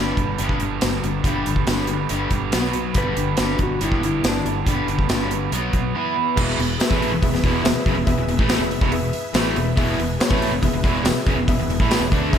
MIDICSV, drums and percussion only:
0, 0, Header, 1, 2, 480
1, 0, Start_track
1, 0, Tempo, 426743
1, 1396, Time_signature, 4, 2, 24, 8
1, 13926, End_track
2, 0, Start_track
2, 0, Title_t, "Drums"
2, 193, Note_on_c, 9, 36, 76
2, 197, Note_on_c, 9, 42, 58
2, 306, Note_off_c, 9, 36, 0
2, 310, Note_off_c, 9, 42, 0
2, 433, Note_on_c, 9, 42, 84
2, 545, Note_off_c, 9, 42, 0
2, 554, Note_on_c, 9, 36, 73
2, 666, Note_off_c, 9, 36, 0
2, 672, Note_on_c, 9, 42, 60
2, 785, Note_off_c, 9, 42, 0
2, 914, Note_on_c, 9, 42, 84
2, 922, Note_on_c, 9, 38, 108
2, 925, Note_on_c, 9, 54, 78
2, 1026, Note_off_c, 9, 42, 0
2, 1034, Note_off_c, 9, 38, 0
2, 1038, Note_off_c, 9, 54, 0
2, 1165, Note_on_c, 9, 42, 58
2, 1278, Note_off_c, 9, 42, 0
2, 1396, Note_on_c, 9, 36, 105
2, 1400, Note_on_c, 9, 42, 80
2, 1508, Note_off_c, 9, 36, 0
2, 1512, Note_off_c, 9, 42, 0
2, 1642, Note_on_c, 9, 42, 57
2, 1755, Note_off_c, 9, 42, 0
2, 1755, Note_on_c, 9, 36, 75
2, 1867, Note_off_c, 9, 36, 0
2, 1876, Note_on_c, 9, 42, 75
2, 1884, Note_on_c, 9, 38, 105
2, 1890, Note_on_c, 9, 54, 74
2, 1989, Note_off_c, 9, 42, 0
2, 1996, Note_off_c, 9, 38, 0
2, 2002, Note_off_c, 9, 54, 0
2, 2106, Note_on_c, 9, 42, 61
2, 2219, Note_off_c, 9, 42, 0
2, 2354, Note_on_c, 9, 42, 83
2, 2466, Note_off_c, 9, 42, 0
2, 2593, Note_on_c, 9, 42, 58
2, 2596, Note_on_c, 9, 36, 71
2, 2706, Note_off_c, 9, 42, 0
2, 2709, Note_off_c, 9, 36, 0
2, 2836, Note_on_c, 9, 42, 91
2, 2844, Note_on_c, 9, 38, 106
2, 2850, Note_on_c, 9, 54, 76
2, 2949, Note_off_c, 9, 42, 0
2, 2957, Note_off_c, 9, 38, 0
2, 2963, Note_off_c, 9, 54, 0
2, 3075, Note_on_c, 9, 42, 58
2, 3187, Note_off_c, 9, 42, 0
2, 3312, Note_on_c, 9, 42, 94
2, 3318, Note_on_c, 9, 36, 101
2, 3424, Note_off_c, 9, 42, 0
2, 3431, Note_off_c, 9, 36, 0
2, 3561, Note_on_c, 9, 42, 68
2, 3673, Note_off_c, 9, 42, 0
2, 3789, Note_on_c, 9, 42, 88
2, 3797, Note_on_c, 9, 38, 105
2, 3804, Note_on_c, 9, 54, 78
2, 3902, Note_off_c, 9, 42, 0
2, 3910, Note_off_c, 9, 38, 0
2, 3916, Note_off_c, 9, 54, 0
2, 4034, Note_on_c, 9, 42, 62
2, 4039, Note_on_c, 9, 36, 79
2, 4146, Note_off_c, 9, 42, 0
2, 4152, Note_off_c, 9, 36, 0
2, 4284, Note_on_c, 9, 42, 85
2, 4396, Note_off_c, 9, 42, 0
2, 4406, Note_on_c, 9, 36, 81
2, 4518, Note_off_c, 9, 36, 0
2, 4536, Note_on_c, 9, 42, 63
2, 4649, Note_off_c, 9, 42, 0
2, 4768, Note_on_c, 9, 54, 86
2, 4769, Note_on_c, 9, 42, 82
2, 4777, Note_on_c, 9, 38, 109
2, 4880, Note_off_c, 9, 54, 0
2, 4882, Note_off_c, 9, 42, 0
2, 4890, Note_off_c, 9, 38, 0
2, 5014, Note_on_c, 9, 42, 54
2, 5127, Note_off_c, 9, 42, 0
2, 5247, Note_on_c, 9, 36, 102
2, 5251, Note_on_c, 9, 42, 88
2, 5360, Note_off_c, 9, 36, 0
2, 5363, Note_off_c, 9, 42, 0
2, 5492, Note_on_c, 9, 42, 53
2, 5604, Note_off_c, 9, 42, 0
2, 5609, Note_on_c, 9, 36, 79
2, 5721, Note_off_c, 9, 36, 0
2, 5726, Note_on_c, 9, 42, 81
2, 5733, Note_on_c, 9, 54, 83
2, 5734, Note_on_c, 9, 38, 98
2, 5839, Note_off_c, 9, 42, 0
2, 5846, Note_off_c, 9, 38, 0
2, 5846, Note_off_c, 9, 54, 0
2, 5971, Note_on_c, 9, 42, 59
2, 6084, Note_off_c, 9, 42, 0
2, 6212, Note_on_c, 9, 42, 78
2, 6325, Note_off_c, 9, 42, 0
2, 6448, Note_on_c, 9, 42, 54
2, 6450, Note_on_c, 9, 36, 75
2, 6561, Note_off_c, 9, 42, 0
2, 6562, Note_off_c, 9, 36, 0
2, 7168, Note_on_c, 9, 49, 122
2, 7170, Note_on_c, 9, 36, 112
2, 7280, Note_off_c, 9, 49, 0
2, 7282, Note_off_c, 9, 36, 0
2, 7418, Note_on_c, 9, 46, 59
2, 7530, Note_off_c, 9, 46, 0
2, 7648, Note_on_c, 9, 54, 91
2, 7655, Note_on_c, 9, 46, 88
2, 7663, Note_on_c, 9, 38, 106
2, 7760, Note_off_c, 9, 54, 0
2, 7767, Note_off_c, 9, 46, 0
2, 7769, Note_on_c, 9, 36, 109
2, 7775, Note_off_c, 9, 38, 0
2, 7882, Note_off_c, 9, 36, 0
2, 7899, Note_on_c, 9, 46, 60
2, 8012, Note_off_c, 9, 46, 0
2, 8127, Note_on_c, 9, 36, 97
2, 8128, Note_on_c, 9, 46, 85
2, 8240, Note_off_c, 9, 36, 0
2, 8241, Note_off_c, 9, 46, 0
2, 8264, Note_on_c, 9, 38, 32
2, 8365, Note_on_c, 9, 36, 102
2, 8373, Note_on_c, 9, 46, 59
2, 8377, Note_off_c, 9, 38, 0
2, 8478, Note_off_c, 9, 36, 0
2, 8485, Note_off_c, 9, 46, 0
2, 8605, Note_on_c, 9, 54, 93
2, 8606, Note_on_c, 9, 46, 82
2, 8614, Note_on_c, 9, 38, 114
2, 8717, Note_off_c, 9, 54, 0
2, 8719, Note_off_c, 9, 46, 0
2, 8727, Note_off_c, 9, 38, 0
2, 8841, Note_on_c, 9, 36, 102
2, 8841, Note_on_c, 9, 46, 55
2, 8953, Note_off_c, 9, 46, 0
2, 8954, Note_off_c, 9, 36, 0
2, 9077, Note_on_c, 9, 46, 83
2, 9079, Note_on_c, 9, 36, 100
2, 9190, Note_off_c, 9, 46, 0
2, 9191, Note_off_c, 9, 36, 0
2, 9320, Note_on_c, 9, 46, 53
2, 9432, Note_off_c, 9, 46, 0
2, 9437, Note_on_c, 9, 36, 101
2, 9550, Note_off_c, 9, 36, 0
2, 9550, Note_on_c, 9, 46, 78
2, 9558, Note_on_c, 9, 38, 112
2, 9559, Note_on_c, 9, 54, 85
2, 9662, Note_off_c, 9, 46, 0
2, 9670, Note_off_c, 9, 38, 0
2, 9672, Note_off_c, 9, 54, 0
2, 9799, Note_on_c, 9, 46, 58
2, 9911, Note_off_c, 9, 46, 0
2, 9914, Note_on_c, 9, 36, 109
2, 10026, Note_off_c, 9, 36, 0
2, 10033, Note_on_c, 9, 46, 79
2, 10145, Note_off_c, 9, 46, 0
2, 10271, Note_on_c, 9, 46, 60
2, 10383, Note_off_c, 9, 46, 0
2, 10508, Note_on_c, 9, 46, 84
2, 10516, Note_on_c, 9, 38, 111
2, 10520, Note_on_c, 9, 54, 94
2, 10621, Note_off_c, 9, 46, 0
2, 10628, Note_off_c, 9, 38, 0
2, 10632, Note_off_c, 9, 54, 0
2, 10757, Note_on_c, 9, 46, 61
2, 10869, Note_off_c, 9, 46, 0
2, 10993, Note_on_c, 9, 36, 108
2, 10997, Note_on_c, 9, 46, 88
2, 11106, Note_off_c, 9, 36, 0
2, 11110, Note_off_c, 9, 46, 0
2, 11242, Note_on_c, 9, 46, 61
2, 11355, Note_off_c, 9, 46, 0
2, 11478, Note_on_c, 9, 46, 83
2, 11483, Note_on_c, 9, 54, 85
2, 11486, Note_on_c, 9, 38, 112
2, 11590, Note_off_c, 9, 46, 0
2, 11593, Note_on_c, 9, 36, 111
2, 11595, Note_off_c, 9, 54, 0
2, 11598, Note_off_c, 9, 38, 0
2, 11705, Note_off_c, 9, 36, 0
2, 11721, Note_on_c, 9, 46, 65
2, 11833, Note_off_c, 9, 46, 0
2, 11954, Note_on_c, 9, 36, 87
2, 11957, Note_on_c, 9, 46, 92
2, 12066, Note_off_c, 9, 36, 0
2, 12069, Note_off_c, 9, 46, 0
2, 12191, Note_on_c, 9, 36, 108
2, 12199, Note_on_c, 9, 46, 61
2, 12304, Note_off_c, 9, 36, 0
2, 12312, Note_off_c, 9, 46, 0
2, 12429, Note_on_c, 9, 46, 86
2, 12436, Note_on_c, 9, 54, 97
2, 12437, Note_on_c, 9, 38, 117
2, 12542, Note_off_c, 9, 46, 0
2, 12548, Note_off_c, 9, 54, 0
2, 12549, Note_off_c, 9, 38, 0
2, 12672, Note_on_c, 9, 36, 105
2, 12676, Note_on_c, 9, 46, 59
2, 12784, Note_off_c, 9, 36, 0
2, 12788, Note_off_c, 9, 46, 0
2, 12913, Note_on_c, 9, 36, 103
2, 12917, Note_on_c, 9, 46, 84
2, 13025, Note_off_c, 9, 36, 0
2, 13030, Note_off_c, 9, 46, 0
2, 13161, Note_on_c, 9, 46, 54
2, 13272, Note_on_c, 9, 36, 105
2, 13273, Note_off_c, 9, 46, 0
2, 13384, Note_off_c, 9, 36, 0
2, 13395, Note_on_c, 9, 46, 82
2, 13396, Note_on_c, 9, 54, 90
2, 13403, Note_on_c, 9, 38, 106
2, 13507, Note_off_c, 9, 46, 0
2, 13509, Note_off_c, 9, 54, 0
2, 13515, Note_off_c, 9, 38, 0
2, 13632, Note_on_c, 9, 36, 106
2, 13636, Note_on_c, 9, 46, 53
2, 13744, Note_off_c, 9, 36, 0
2, 13749, Note_off_c, 9, 46, 0
2, 13871, Note_on_c, 9, 36, 103
2, 13878, Note_on_c, 9, 46, 79
2, 13926, Note_off_c, 9, 36, 0
2, 13926, Note_off_c, 9, 46, 0
2, 13926, End_track
0, 0, End_of_file